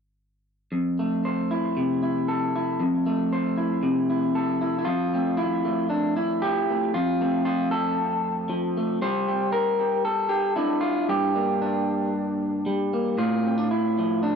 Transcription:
0.72 2.80 F2 medium
0.99 3.06 A3 soft
1.25 2.28 C5 soft
1.51 2.02 E4 medium
1.77 2.77 C3 medium
2.03 2.55 E4 medium
2.28 3.32 A4 medium
2.56 2.83 E4 soft
2.80 4.86 F2 medium
3.06 4.84 A3 soft
3.33 4.35 C5 medium
3.57 4.09 E4 medium
3.83 4.84 C3 medium
4.10 4.60 E4 medium
4.35 4.84 A4 medium
4.61 4.77 E4 medium
4.79 4.86 E4 medium
4.85 6.94 F2 medium
4.85 5.90 F4 medium
5.14 5.65 A3 soft
5.14 5.37 C4 soft
5.37 5.89 E4 medium
5.65 6.69 A3 soft
5.90 6.16 D4 medium
6.17 6.94 E4 medium
6.42 6.92 F3 medium
6.42 6.94 G4 medium
6.70 6.92 A3 soft
6.94 9.01 F2 medium
6.94 7.44 F4 loud
7.21 8.75 A3 soft
7.21 9.01 C4 soft
7.45 7.71 F4 medium
7.71 9.01 A4 medium
8.49 8.98 F3 medium
8.77 8.99 A3 soft
9.02 11.05 G3 medium
9.02 9.52 C5 loud
9.28 9.79 G4 soft
9.52 10.04 A#4 medium
9.80 10.28 G4 soft
10.05 10.80 A4 medium
10.29 10.55 G4 medium
10.56 11.35 D4 medium
10.56 11.34 E4 medium
10.81 11.07 F4 medium
11.09 13.16 G2 medium
11.09 12.13 G4 medium
11.35 12.92 A#3 soft
11.35 11.61 D4 soft
11.62 12.93 D4 medium
12.66 13.16 G3 medium
12.93 13.16 A#3 soft
13.18 14.36 A2 medium
13.18 14.23 F4 medium
13.45 13.58 C4 soft
13.58 13.70 D4 soft
13.71 14.22 E4 medium
13.99 14.36 F3 soft
14.23 14.36 D4 medium

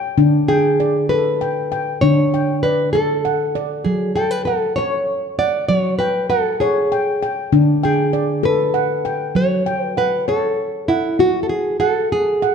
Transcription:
0.00 0.14 F#3 medium
0.00 0.48 G5 medium
0.18 1.98 D3 medium
0.18 0.79 D4 medium
0.48 1.09 G#4 medium
0.48 1.40 G5 medium
0.80 1.72 D5 medium
1.09 1.71 A4 medium
1.09 1.98 B4 medium
1.41 1.70 G5 medium
1.72 2.33 G5 medium
2.01 3.82 D3 medium
2.01 2.63 D4 medium
2.01 2.63 C#5 medium
2.34 3.25 G5 medium
2.63 2.92 B4 medium
2.63 3.54 D5 medium
2.93 3.58 A4 medium
2.93 3.56 A4 medium
3.25 4.16 F#5 medium
3.55 4.16 D5 medium
3.85 5.65 F#3 medium
3.85 4.15 G#4 medium
4.16 4.31 A4 medium
4.16 5.08 G5 medium
4.31 4.45 B4 medium
4.45 4.75 A4 medium
4.45 5.38 F#5 medium
4.76 5.38 C#5 medium
4.76 5.39 C#5 medium
5.39 5.68 D5 medium
5.39 6.29 F#5 medium
5.69 7.49 F#3 medium
5.69 5.98 C#5 medium
5.99 6.29 B4 medium
5.99 6.91 G5 medium
6.30 6.60 A4 medium
6.30 7.22 F#5 medium
6.60 7.25 G#4 medium
6.60 7.22 C#5 medium
6.92 7.21 G5 medium
7.23 7.82 G5 medium
7.52 9.32 D3 medium
7.52 8.14 D4 medium
7.83 8.45 G#4 medium
7.83 8.75 G5 medium
8.13 9.05 D5 medium
8.43 9.05 A4 medium
8.43 9.36 B4 medium
8.74 9.66 F#5 medium
9.05 9.65 G5 medium
9.35 9.97 F#3 medium
9.35 9.84 C#5 medium
9.66 10.58 G5 medium
9.84 9.98 B4 medium
9.97 10.28 B4 medium
9.97 10.88 F#5 medium
10.28 10.88 A4 medium
10.28 10.89 C#5 medium
10.88 11.20 E4 medium
10.88 11.50 F#5 medium
11.19 11.81 F#4 medium
11.19 11.43 F#4 medium
11.43 11.49 A4 medium
11.49 11.79 G#4 medium
11.80 12.12 A4 medium
11.80 12.41 F#5 medium
12.12 12.55 G#4 medium
12.42 12.55 F#5 medium

